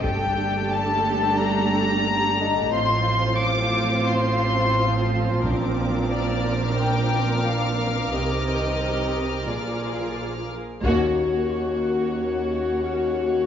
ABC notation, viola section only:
X:1
M:4/4
L:1/8
Q:1/4=89
K:Bb
V:1 name="Viola section"
[A,D]8 | [F,C]8- | [F,C]8 | [E,C]4 [F,F]3 z |
[K:Ebm] B,8 |]